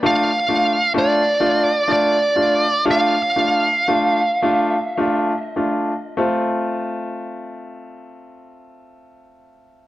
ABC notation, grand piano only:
X:1
M:6/8
L:1/8
Q:3/8=37
K:F
V:1 name="Grand piano"
[A,DF] [A,DF] [A,DF] [A,DF] [A,DF] [A,DF] | [A,DF] [A,DF] [A,DF] [A,DF] [A,DF] [A,DF] | [A,CF]6 |]